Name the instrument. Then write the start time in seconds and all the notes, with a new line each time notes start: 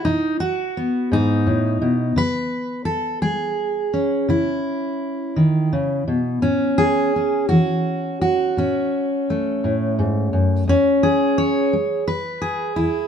steel-string acoustic guitar
0.05 B2 D#4
0.40 F#4
0.77 B3
1.12 G#2 D#4
1.47 A2
1.82 B2
2.16 C#3 B4
2.85 A4
3.22 G#3 G#4
3.94 C#4
4.29 C#3 E4
5.36 D#3
5.73 C#3
6.08 B2
6.42 A2 C#4
6.78 G#4
7.16 C#4
7.49 E3 F#4
8.21 F#4
8.57 A2 C#4
9.30 A3
9.64 A2
9.99 G#2
10.33 F#2
10.68 E2 C#4
11.03 G#4
11.38 C#5
11.73 G#3
12.08 B4
12.42 G#4
12.76 E2 E4